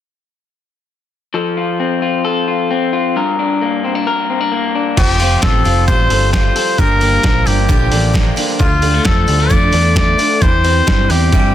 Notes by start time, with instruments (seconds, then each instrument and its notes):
1.34 clean electric guitar F3 A4
1.57 clean electric guitar F4
1.80 clean electric guitar C4
2.02 clean electric guitar F4
2.25 clean electric guitar A4
2.48 clean electric guitar F4
2.71 clean electric guitar C4
2.93 clean electric guitar F4
3.16 clean electric guitar G2 A#4
3.39 clean electric guitar D4
3.62 clean electric guitar A#3
3.84 clean electric guitar C4
3.95 clean electric guitar D4
4.07 clean electric guitar A#4
4.30 clean electric guitar C4
4.41 clean electric guitar D4
4.52 clean electric guitar A#3
4.75 clean electric guitar D4
4.97 picked electric bass F1, twelve-string acoustic guitar F3 A3 C4 F4 G4, clean electric guitar F3, trumpet G4, kick, closed hi-hat, crash
5.19 twelve-string acoustic guitar C4 F4 G4, clean electric guitar F4, open hi-hat
5.42 picked electric bass A1, twelve-string acoustic guitar A3 C4 F4 G4, clean electric guitar C4, trumpet A4, kick, snare, closed hi-hat
5.65 picked electric bass F1, twelve-string acoustic guitar C4 F4 G4, clean electric guitar F4, open hi-hat
5.88 picked electric bass A1, twelve-string acoustic guitar F3 A3 C4 F4 G4, clean electric guitar G3, trumpet C5, kick, closed hi-hat
6.10 picked electric bass G1, twelve-string acoustic guitar C4 F4 G4, clean electric guitar A4, open hi-hat
6.33 twelve-string acoustic guitar A3 C4 F4 G4, clean electric guitar F4, trumpet C5, kick, snare, closed hi-hat
6.56 twelve-string acoustic guitar C4 F4 G4, clean electric guitar A4, open hi-hat
6.78 picked electric bass G1, twelve-string acoustic guitar G2 D3 F3 A#3 D4 G4, clean electric guitar G2, trumpet A#4, kick, closed hi-hat
7.00 twelve-string acoustic guitar F3 A#3 D4 G4, clean electric guitar A#3, open hi-hat
7.23 picked electric bass A#1, twelve-string acoustic guitar F3 G4, clean electric guitar F3, kick, snare, closed hi-hat
7.45 picked electric bass G1, twelve-string acoustic guitar F3 A#3 D4 G4, clean electric guitar A#3, trumpet G4, open hi-hat
7.68 picked electric bass A#1, twelve-string acoustic guitar G2 D3 F3 A#3 D4 G4, clean electric guitar D3, kick, closed hi-hat
7.91 picked electric bass A1, twelve-string acoustic guitar F3 A#3 D4 G4, clean electric guitar D4, open hi-hat
8.14 twelve-string acoustic guitar F3 A#3 D4 G4, clean electric guitar A#3, kick, snare, closed hi-hat
8.36 twelve-string acoustic guitar F3 A#3 D4 G4, clean electric guitar D4, open hi-hat
8.59 picked electric bass D2, twelve-string acoustic guitar D3 F3 D4 F4 A4, clean electric guitar D3, trumpet F4, kick, closed hi-hat
8.82 clean electric guitar G3, twelve-string acoustic guitar D4 F4 A4, open hi-hat
8.94 clean electric guitar A3
9.04 picked electric bass F2, twelve-string acoustic guitar F3 A4, clean electric guitar F3, trumpet A4, kick, snare, closed hi-hat
9.27 picked electric bass D2, clean electric guitar G3, twelve-string acoustic guitar D4 F4 A4, open hi-hat
9.40 clean electric guitar A3
9.50 picked electric bass F2, twelve-string acoustic guitar D3 F3 D4 F4 A4, trumpet D5, kick, closed hi-hat
9.72 picked electric bass E2, clean electric guitar D4, twelve-string acoustic guitar D4 F4 A4, open hi-hat
9.95 twelve-string acoustic guitar F3 D4 F4 A4, clean electric guitar A3, trumpet D5, kick, snare, closed hi-hat
10.18 clean electric guitar D4, twelve-string acoustic guitar D4 F4 A4, open hi-hat
10.41 picked electric bass E2, twelve-string acoustic guitar E3 G3 C4 E4 G4, clean electric guitar E3, trumpet C5, kick, closed hi-hat
10.64 clean electric guitar C4, twelve-string acoustic guitar C4 E4 G4, open hi-hat
10.86 picked electric bass G2, twelve-string acoustic guitar G3 C4 E4 G4, clean electric guitar G3, kick, snare, closed hi-hat
11.10 picked electric bass E2, clean electric guitar C4, twelve-string acoustic guitar C4 E4 G4, trumpet G4, open hi-hat
11.32 picked electric bass G2, twelve-string acoustic guitar E3 G3 C4 E4 G4, clean electric guitar G3, kick, closed hi-hat